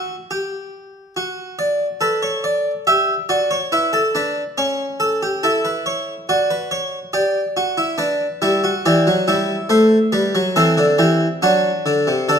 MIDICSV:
0, 0, Header, 1, 2, 480
1, 0, Start_track
1, 0, Tempo, 857143
1, 651, Time_signature, 4, 2, 24, 8
1, 6940, End_track
2, 0, Start_track
2, 0, Title_t, "Harpsichord"
2, 0, Program_c, 0, 6
2, 0, Note_on_c, 0, 66, 72
2, 80, Note_off_c, 0, 66, 0
2, 172, Note_on_c, 0, 67, 71
2, 638, Note_off_c, 0, 67, 0
2, 652, Note_on_c, 0, 66, 62
2, 889, Note_on_c, 0, 74, 72
2, 1037, Note_off_c, 0, 74, 0
2, 1115, Note_off_c, 0, 66, 0
2, 1124, Note_on_c, 0, 69, 64
2, 1127, Note_on_c, 0, 71, 75
2, 1244, Note_off_c, 0, 71, 0
2, 1246, Note_on_c, 0, 73, 66
2, 1363, Note_off_c, 0, 73, 0
2, 1367, Note_on_c, 0, 74, 66
2, 1516, Note_off_c, 0, 74, 0
2, 1591, Note_off_c, 0, 69, 0
2, 1607, Note_on_c, 0, 76, 73
2, 1608, Note_on_c, 0, 67, 64
2, 1756, Note_off_c, 0, 67, 0
2, 1756, Note_off_c, 0, 76, 0
2, 1843, Note_on_c, 0, 74, 71
2, 1844, Note_on_c, 0, 66, 63
2, 1961, Note_off_c, 0, 74, 0
2, 1964, Note_on_c, 0, 73, 77
2, 1994, Note_off_c, 0, 66, 0
2, 2081, Note_off_c, 0, 73, 0
2, 2084, Note_on_c, 0, 64, 62
2, 2086, Note_on_c, 0, 71, 76
2, 2201, Note_on_c, 0, 69, 73
2, 2203, Note_off_c, 0, 71, 0
2, 2234, Note_off_c, 0, 64, 0
2, 2320, Note_off_c, 0, 69, 0
2, 2323, Note_on_c, 0, 62, 64
2, 2327, Note_on_c, 0, 71, 72
2, 2473, Note_off_c, 0, 62, 0
2, 2476, Note_off_c, 0, 71, 0
2, 2563, Note_on_c, 0, 73, 77
2, 2564, Note_on_c, 0, 61, 62
2, 2712, Note_off_c, 0, 73, 0
2, 2799, Note_on_c, 0, 69, 73
2, 2918, Note_off_c, 0, 69, 0
2, 2926, Note_on_c, 0, 67, 65
2, 3029, Note_off_c, 0, 61, 0
2, 3042, Note_off_c, 0, 67, 0
2, 3043, Note_on_c, 0, 69, 68
2, 3044, Note_on_c, 0, 64, 63
2, 3160, Note_off_c, 0, 69, 0
2, 3162, Note_on_c, 0, 71, 71
2, 3280, Note_off_c, 0, 71, 0
2, 3282, Note_on_c, 0, 73, 68
2, 3431, Note_off_c, 0, 73, 0
2, 3509, Note_off_c, 0, 64, 0
2, 3523, Note_on_c, 0, 66, 71
2, 3524, Note_on_c, 0, 74, 76
2, 3640, Note_off_c, 0, 74, 0
2, 3643, Note_on_c, 0, 71, 74
2, 3759, Note_off_c, 0, 71, 0
2, 3759, Note_on_c, 0, 73, 77
2, 3908, Note_off_c, 0, 73, 0
2, 3986, Note_off_c, 0, 66, 0
2, 3995, Note_on_c, 0, 74, 80
2, 3996, Note_on_c, 0, 67, 71
2, 4145, Note_off_c, 0, 67, 0
2, 4237, Note_on_c, 0, 66, 69
2, 4354, Note_off_c, 0, 66, 0
2, 4354, Note_on_c, 0, 64, 55
2, 4460, Note_off_c, 0, 74, 0
2, 4468, Note_on_c, 0, 62, 71
2, 4471, Note_on_c, 0, 71, 70
2, 4472, Note_off_c, 0, 64, 0
2, 4619, Note_off_c, 0, 62, 0
2, 4714, Note_on_c, 0, 55, 82
2, 4714, Note_on_c, 0, 64, 65
2, 4832, Note_off_c, 0, 64, 0
2, 4838, Note_on_c, 0, 66, 58
2, 4864, Note_off_c, 0, 55, 0
2, 4939, Note_off_c, 0, 71, 0
2, 4953, Note_off_c, 0, 66, 0
2, 4959, Note_on_c, 0, 74, 65
2, 4960, Note_on_c, 0, 52, 81
2, 4961, Note_on_c, 0, 67, 69
2, 5075, Note_off_c, 0, 52, 0
2, 5080, Note_on_c, 0, 54, 76
2, 5108, Note_off_c, 0, 67, 0
2, 5194, Note_off_c, 0, 54, 0
2, 5195, Note_on_c, 0, 64, 65
2, 5196, Note_on_c, 0, 55, 80
2, 5344, Note_off_c, 0, 55, 0
2, 5422, Note_off_c, 0, 74, 0
2, 5429, Note_on_c, 0, 57, 84
2, 5430, Note_on_c, 0, 72, 71
2, 5581, Note_off_c, 0, 57, 0
2, 5582, Note_off_c, 0, 72, 0
2, 5669, Note_on_c, 0, 71, 67
2, 5670, Note_on_c, 0, 55, 83
2, 5791, Note_off_c, 0, 55, 0
2, 5795, Note_on_c, 0, 54, 86
2, 5822, Note_off_c, 0, 71, 0
2, 5897, Note_off_c, 0, 64, 0
2, 5914, Note_off_c, 0, 54, 0
2, 5914, Note_on_c, 0, 52, 98
2, 5914, Note_on_c, 0, 69, 75
2, 5916, Note_on_c, 0, 60, 74
2, 6034, Note_off_c, 0, 52, 0
2, 6034, Note_on_c, 0, 50, 84
2, 6066, Note_off_c, 0, 69, 0
2, 6152, Note_on_c, 0, 52, 87
2, 6153, Note_on_c, 0, 67, 73
2, 6155, Note_off_c, 0, 50, 0
2, 6305, Note_off_c, 0, 52, 0
2, 6306, Note_off_c, 0, 67, 0
2, 6388, Note_off_c, 0, 60, 0
2, 6397, Note_on_c, 0, 62, 79
2, 6399, Note_on_c, 0, 54, 92
2, 6399, Note_on_c, 0, 66, 70
2, 6551, Note_off_c, 0, 54, 0
2, 6641, Note_on_c, 0, 50, 86
2, 6760, Note_off_c, 0, 50, 0
2, 6761, Note_on_c, 0, 48, 81
2, 6870, Note_off_c, 0, 66, 0
2, 6880, Note_on_c, 0, 50, 83
2, 6881, Note_off_c, 0, 48, 0
2, 6882, Note_on_c, 0, 69, 73
2, 6940, Note_off_c, 0, 50, 0
2, 6940, Note_off_c, 0, 62, 0
2, 6940, Note_off_c, 0, 69, 0
2, 6940, End_track
0, 0, End_of_file